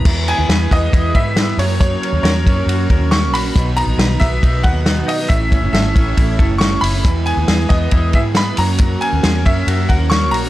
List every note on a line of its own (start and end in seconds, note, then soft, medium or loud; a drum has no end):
0.00 0.10 E4 medium
0.00 0.29 A#5 loud
0.05 0.33 E2 medium
0.05 0.38 E3 medium
0.05 1.63 E3 medium
0.05 0.38 G#3 medium
0.05 1.58 G#3 loud
0.05 0.37 B3 medium
0.05 0.36 E4 medium
0.05 1.58 E4 medium
0.05 1.58 B4 medium
0.05 kick loud
0.05 crash loud
0.28 0.70 B3 medium
0.28 0.73 G#5 loud
0.28 ride medium
0.37 0.48 D#2 loud
0.37 0.70 G#3 soft
0.37 0.71 B3 soft
0.37 0.71 E4 medium
0.49 0.67 E2 medium
0.49 1.14 B4 medium
0.49 snare loud
0.49 ride medium
0.71 0.90 E2 medium
0.71 1.15 E3 medium
0.71 1.15 G#3 medium
0.71 1.35 B3 medium
0.71 1.15 B3 medium
0.71 1.15 E4 medium
0.71 1.17 D#5 loud
0.71 kick medium
0.71 snare soft
0.71 ride medium
0.93 1.11 E2 loud
0.93 1.63 E4 medium
0.93 kick medium
0.93 ride medium
1.15 1.52 G#2 medium
1.15 1.36 E3 medium
1.15 1.37 G#3 medium
1.15 1.38 B3 medium
1.15 1.38 E4 medium
1.15 1.63 B4 medium
1.15 1.56 E5 loud
1.15 kick medium
1.15 ride soft
1.36 1.59 E3 medium
1.36 1.59 G#3 medium
1.36 1.63 B3 medium
1.36 1.60 B3 medium
1.36 1.60 E4 medium
1.36 snare loud
1.36 ride medium
1.57 1.95 F#2 medium
1.57 2.14 F#2 medium
1.57 2.14 C#3 medium
1.57 5.26 F#3 medium
1.57 1.79 F#3 medium
1.57 2.17 F#3 medium
1.57 2.14 A#3 medium
1.57 3.53 C#4 medium
1.57 2.13 C#4 medium
1.57 3.53 A#4 loud
1.57 1.79 C#5 medium
1.57 open hi-hat medium
1.57 ride medium
1.80 3.55 F#3 medium
1.80 2.22 C#5 loud
1.80 kick loud
1.80 hi-hat pedal medium
1.80 ride medium
2.02 2.46 C#4 medium
2.02 ride medium
2.13 2.22 D#2 loud
2.13 2.47 A#3 medium
2.13 2.47 C#4 medium
2.17 2.47 F#3 soft
2.23 2.46 E2 loud
2.23 2.89 A#4 medium
2.23 3.14 C#5 medium
2.23 snare loud
2.23 ride medium
2.46 2.65 F#2 medium
2.46 2.89 C#3 medium
2.46 2.91 F#3 medium
2.46 2.90 A#3 medium
2.46 3.10 C#4 medium
2.46 2.91 C#4 medium
2.46 kick medium
2.46 ride medium
2.66 2.86 F#2 loud
2.66 3.32 F#4 medium
2.66 ride medium
2.90 3.32 D#2 medium
2.90 3.11 C#3 medium
2.90 3.11 F#3 medium
2.90 3.12 A#3 medium
2.90 3.12 C#4 medium
2.90 3.60 A#4 medium
2.90 kick loud
2.90 ride medium
3.11 3.44 C#3 medium
3.11 3.45 F#3 medium
3.11 3.44 A#3 medium
3.11 3.60 C#4 medium
3.11 3.44 C#4 medium
3.11 3.34 C#6 loud
3.11 snare loud
3.11 ride medium
3.32 3.51 A#1 medium
3.32 3.60 F#4 medium
3.32 3.78 B5 loud
3.32 open hi-hat medium
3.32 ride medium
3.45 3.55 F#3 soft
3.45 3.56 A#3 soft
3.45 3.56 C#4 medium
3.55 3.83 B1 loud
3.55 5.29 B2 medium
3.55 3.88 B2 medium
3.55 5.29 D#3 medium
3.55 3.87 F#3 medium
3.55 3.86 B3 medium
3.55 3.86 D#4 medium
3.55 5.29 B4 loud
3.55 kick loud
3.55 hi-hat pedal medium
3.55 ride medium
3.77 4.20 B3 medium
3.77 4.22 A#5 loud
3.77 ride medium
3.86 3.96 A#1 medium
3.86 4.19 F#3 soft
3.86 4.20 B3 soft
3.86 4.20 D#4 medium
3.98 4.17 B1 medium
3.98 4.63 B4 medium
3.98 snare loud
3.98 ride medium
4.19 4.39 B1 medium
4.19 4.62 B2 medium
4.19 4.63 F#3 medium
4.19 4.84 B3 medium
4.19 4.64 B3 medium
4.19 4.61 E5 loud
4.19 kick medium
4.19 snare soft
4.19 ride medium
4.43 4.61 B1 loud
4.43 5.05 D#4 medium
4.43 kick medium
4.43 ride medium
4.63 5.01 D#2 medium
4.63 4.84 B2 medium
4.63 4.85 F#3 medium
4.63 4.86 B3 medium
4.63 4.86 D#4 medium
4.63 5.34 B4 medium
4.63 5.09 F#5 loud
4.63 kick loud
4.63 ride soft
4.85 5.19 B2 medium
4.85 5.19 F#3 medium
4.85 5.34 B3 medium
4.85 5.18 B3 medium
4.85 5.18 D#4 medium
4.85 snare loud
4.85 ride medium
5.07 5.34 D#4 medium
5.07 5.29 D#5 medium
5.07 open hi-hat medium
5.07 ride medium
5.19 5.29 F#3 soft
5.19 5.29 B3 medium
5.19 5.30 D#4 soft
5.29 5.57 A1 loud
5.29 5.62 A2 medium
5.29 7.05 A2 medium
5.29 5.62 E3 medium
5.29 7.02 A3 medium
5.29 5.62 A3 medium
5.29 5.62 C#4 medium
5.29 8.54 E4 medium
5.29 5.62 E4 medium
5.29 7.03 C#5 medium
5.29 5.70 E5 loud
5.29 kick loud
5.29 hi-hat pedal medium
5.29 ride medium
5.51 5.94 C#4 medium
5.51 kick loud
5.51 ride medium
5.62 5.71 F#1 medium
5.62 5.94 A3 soft
5.62 5.96 C#4 medium
5.62 5.96 E4 medium
5.73 5.92 G#1 medium
5.73 6.38 A4 medium
5.73 6.57 E5 medium
5.73 snare loud
5.73 ride medium
5.95 6.14 A1 medium
5.95 6.38 E3 medium
5.95 6.38 A3 medium
5.95 6.60 C#4 medium
5.95 6.38 C#4 medium
5.95 6.39 E4 medium
5.95 kick loud
5.95 ride medium
6.17 6.36 A1 loud
6.17 6.82 E4 medium
6.17 kick medium
6.17 ride medium
6.38 6.76 F#1 medium
6.38 6.61 E3 medium
6.38 6.61 A3 medium
6.38 6.61 C#4 medium
6.38 6.61 E4 medium
6.38 7.09 A4 medium
6.38 kick medium
6.38 ride soft
6.58 6.94 E3 medium
6.58 7.09 C#4 medium
6.58 6.82 C#6 loud
6.58 snare loud
6.58 ride medium
6.63 6.95 A3 medium
6.63 6.94 C#4 medium
6.63 6.93 E4 medium
6.81 7.01 F#1 medium
6.81 7.09 E4 medium
6.81 7.23 B5 loud
6.81 open hi-hat medium
6.81 ride medium
6.94 7.05 A3 soft
6.94 7.06 C#4 medium
6.94 7.05 E4 medium
7.03 7.33 E2 medium
7.03 8.62 E3 medium
7.03 7.38 E3 medium
7.03 8.56 G#3 loud
7.03 7.38 G#3 medium
7.03 7.38 B3 medium
7.03 7.38 E4 medium
7.03 8.56 B4 loud
7.03 kick loud
7.03 hi-hat pedal medium
7.03 ride medium
7.26 7.69 B3 medium
7.26 7.71 G#5 medium
7.26 ride medium
7.37 7.47 D#2 loud
7.37 7.71 G#3 soft
7.37 7.71 B3 medium
7.37 7.71 E4 medium
7.48 7.67 E2 loud
7.48 8.14 G#4 medium
7.48 snare loud
7.48 ride medium
7.69 7.89 E2 medium
7.69 8.14 E3 medium
7.69 8.14 G#3 medium
7.69 8.35 B3 medium
7.69 8.15 B3 medium
7.69 8.15 D#5 medium
7.69 kick medium
7.69 snare soft
7.69 ride medium
7.74 8.16 E4 medium
7.91 8.11 E2 loud
7.91 8.62 E4 medium
7.91 kick loud
7.91 ride medium
8.13 8.35 E3 medium
8.13 8.36 G#3 medium
8.13 8.36 B3 medium
8.13 8.36 E4 medium
8.13 8.63 G#4 medium
8.13 8.20 E5 medium
8.13 kick loud
8.13 ride medium
8.35 8.57 E3 medium
8.35 8.58 G#3 medium
8.35 8.62 B3 medium
8.35 8.58 B3 medium
8.35 8.59 E4 medium
8.35 8.57 B5 loud
8.35 snare loud
8.35 ride medium
8.57 9.13 F#2 medium
8.57 8.95 F#2 loud
8.57 9.13 C#3 medium
8.57 9.14 F#3 medium
8.57 10.49 F#3 medium
8.57 8.80 F#3 medium
8.57 9.13 A#3 medium
8.57 10.49 C#4 medium
8.57 9.12 C#4 medium
8.57 10.49 A#4 loud
8.57 9.03 A#5 loud
8.57 open hi-hat medium
8.57 ride medium
8.78 10.49 F#3 medium
8.78 kick loud
8.78 hi-hat pedal medium
8.78 ride medium
9.01 9.45 C#4 medium
9.01 9.42 G#5 loud
9.01 ride medium
9.13 9.22 D#2 medium
9.13 9.45 F#3 soft
9.13 9.46 A#3 soft
9.13 9.46 C#4 medium
9.23 9.46 E2 loud
9.23 9.35 G#4 medium
9.23 snare loud
9.23 ride medium
9.35 9.88 A#4 medium
9.46 9.64 F#2 medium
9.46 9.87 C#3 medium
9.46 9.89 F#3 medium
9.46 9.89 A#3 medium
9.46 10.10 C#4 medium
9.46 9.89 C#4 medium
9.46 9.86 E5 loud
9.46 kick medium
9.46 ride medium
9.67 9.86 F#2 loud
9.67 10.32 F#4 medium
9.67 ride medium
9.89 10.32 D#2 medium
9.89 10.09 C#3 medium
9.89 10.10 F#3 medium
9.89 10.10 A#3 medium
9.89 10.11 C#4 medium
9.89 10.49 A#4 medium
9.89 10.12 F#5 medium
9.89 kick medium
9.89 ride medium
10.10 10.43 C#3 medium
10.10 10.44 F#3 medium
10.10 10.44 A#3 medium
10.10 10.49 C#4 medium
10.10 10.43 C#4 medium
10.10 10.33 C#6 loud
10.10 snare loud
10.10 ride medium
10.31 10.49 A#1 medium
10.31 10.49 F#4 medium
10.31 10.49 A#5 loud
10.31 open hi-hat medium
10.31 ride medium
10.44 10.49 A#3 soft
10.44 10.49 C#4 medium